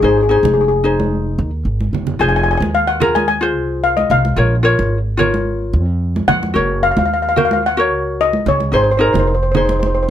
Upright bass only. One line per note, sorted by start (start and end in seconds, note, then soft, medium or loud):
0.02 0.38 G#1 medium
0.43 1.40 F1 medium
1.38 1.62 D#2 medium
1.65 1.90 G#1 medium
1.93 2.18 F#1 medium
2.20 2.55 F1 medium
2.60 3.56 D#2 medium
3.56 4.03 C2 medium
4.10 4.34 C2 medium
4.37 4.72 A#1 medium
4.79 5.75 G#1 medium
5.73 6.20 F2 medium
6.28 6.51 F2 medium
6.56 6.91 F#1 medium
6.97 7.91 D#2 medium
7.91 8.38 C#2 loud
8.46 8.69 C#2 medium
8.73 9.08 G#1 medium
9.14 10.10 F1 medium